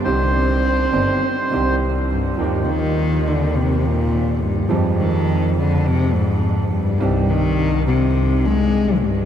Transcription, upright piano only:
\new Staff \with { instrumentName = "Upright piano" } { \clef bass \time 4/4 \key c \minor \tempo 4 = 104 <c, c ees c' d' g'>4. <g,, g, ees c' d' g'>8 r8 <c, c ees c' d' g'>4. | \key ees \major <ees, ees f bes ees' g'>1 | <f, f aes c' g'>1 | <c, c ees c' d' g'>1 | }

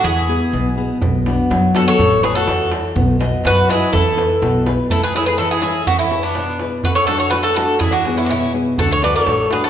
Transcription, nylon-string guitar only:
\new Staff \with { instrumentName = "Nylon-string guitar" } { \time 2/4 \key a \major \tempo 4 = 124 e8 <b e' gis'>8 b,8 <b e' gis'>8 | b,8 <b d' fis'>8 fis8 <b d' fis'>8 | a8 <e' a' cis''>8 e8 <e' a' cis''>8 | b8 <fis' b' dis''>8 fis8 <fis' b' dis''>8 |
e8 <e' b'>8 b,8 <e' gis' b'>8 | a8 <e' a' cis''>8 e8 <e' a' cis''>8 | e8 <e' gis' b'>8 b,8 <e' gis' b'>8 | d8 <d' fis' a'>8 a8 <d' fis' a'>8 |
e8 <b e' gis'>8 b,8 <b e' gis'>8 | d8 <a d' fis'>8 a8 <a d' fis'>8 | }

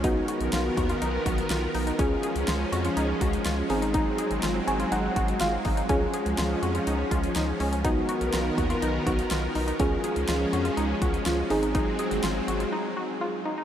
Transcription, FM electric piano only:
\new Staff \with { instrumentName = "FM electric piano" } { \time 4/4 \key cis \mixolydian \tempo 4 = 123 << { r1 | r1 | r4. gis''8 fis''4 eis''4 | r1 |
r1 | r1 | r1 | } \\ { <b dis' fis'>1 | <cis' eis' gis'>2.~ <cis' eis' gis'>8 <bis dis' gis'>8~ | <bis dis' gis'>2.~ <bis dis' gis'>8 r8 | <cis' eis' gis'>1 |
<b dis' fis'>2~ <b dis' fis'>8 <b dis' fis'>4. | <cis' eis' gis'>2.~ <cis' eis' gis'>8 <bis dis' gis'>8~ | <bis dis' gis'>2.~ <bis dis' gis'>8 r8 | } >> }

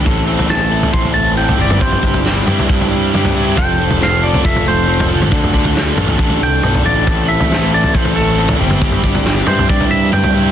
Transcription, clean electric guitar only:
\new Staff \with { instrumentName = "Clean electric guitar" } { \time 4/4 \key a \minor \tempo 4 = 137 r4 a''4 c'''8 a''8 g''8 d''8 | c''2. r4 | g''4 f''8 d''8 e''8 c''4.~ | c''4. r4 g''4 d''8~ |
d''8 e''4 d''8 c''8 a'4 r8 | r4. c''8 d''8 e''8 g''4 | }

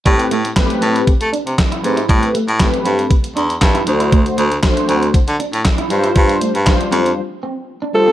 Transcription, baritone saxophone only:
\new Staff \with { instrumentName = "Baritone saxophone" } { \clef bass \time 4/4 \key a \minor \tempo 4 = 118 a,8 a,8 r8 a,8 a16 a16 r16 c16 r8 gis,8 | a,8 r16 a,8 r16 g,8 r8 e,8 g,8 d,8~ | d,8 d,8 r8 d,8 d16 d16 r16 a,16 r8 g,8 | g,8 r16 g,8 r16 f,8 r2 | }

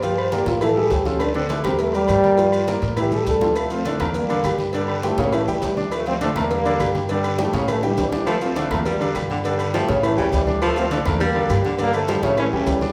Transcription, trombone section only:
\new Staff \with { instrumentName = "Trombone section" } { \clef bass \time 4/4 \key d \minor \tempo 4 = 204 << { r1 | r1 | r2. g4 | a8 c'8 a8 a8 bes4. r8 |
g4 a8 bes8 a8 g8 g4 | a8 c'8 a8 a8 bes4. r8 | g4 a8 bes8 a8 g8 g4 | a8 c'8 a8 a8 bes4. r8 |
g4 a8 r8 a8 g8 g4 | a8 c'8 a16. bes32 a8 bes4. r8 | bes8 a8 g8 a8 cis'8 cis'8 g4 | } \\ { r1 | r1 | r2. e4 | f8 a8 f8 f8 g4. r8 |
d4 f8 g8 e8 e8 e4 | f8 a8 f8 f8 g4. r8 | d4 f8 g8 e8 e8 e4 | f8 a8 f8 f8 g4. r8 |
d4 f8 r8 e8 e8 e4 | f8 a8 f8 f8 g4. r8 | g8 f8 d8 f8 a8 a8 e4 | } >> }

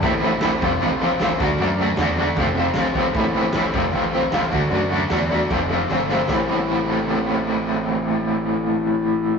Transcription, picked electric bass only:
\new Staff \with { instrumentName = "Picked electric bass" } { \clef bass \time 4/4 \key a \minor \tempo 4 = 153 a,,4 a,,8 f,,8 a,,4 a,,8 d,8 | fis,4 e,4 f,,4 a,,4 | a,,4 a,,8 f,,8 a,,4 a,,8 d,8 | fis,4 e,4 f,,4 g,,4 |
a,,1~ | a,,1 | }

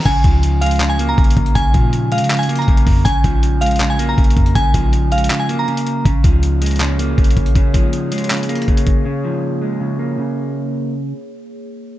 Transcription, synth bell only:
\new Staff \with { instrumentName = "Synth bell" } { \time 4/4 \key bes \minor \tempo 4 = 160 aes''4. f''8. aes''8 bes''4~ bes''16 | aes''4. f''8. aes''8 bes''4~ bes''16 | aes''4. f''8. aes''8 bes''4~ bes''16 | aes''4. f''8. aes''8 bes''4~ bes''16 |
r1 | r1 | r1 | r1 | }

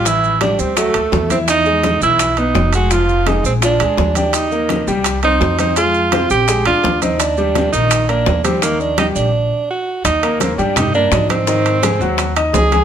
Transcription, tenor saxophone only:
\new Staff \with { instrumentName = "Tenor saxophone" } { \time 4/4 \key ees \major \tempo 4 = 168 e'4 d'8 c'8 a4. c'8 | dis'4. e'4 dis'4 ges'8 | f'4 ees'8 c'8 d'4. d'8 | ees'4. r4 ees'4 ees'8 |
f'4. g'4 f'4 c'8 | d'4. ees'4 d'4 c'8 | bes8 d'8 ees'8 d'4. fis'4 | ees'4 c'16. des'32 d'8 ees'8 d'4 c'8~ |
c'2~ c'8 r8 aes'4 | }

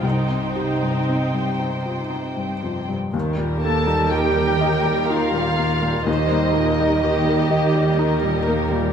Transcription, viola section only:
\new Staff \with { instrumentName = "Viola section" } { \clef bass \time 3/4 \key ees \major \tempo 4 = 61 << { ees'2 r4 | g'2. | g'2. | } \\ { r2. | ees16 g16 bes16 g16 ees16 g16 bes16 g16 ees16 g16 bes16 g16 | ees16 g16 bes16 g16 ees16 g16 bes16 g16 ees16 g16 bes16 g16 | } >> }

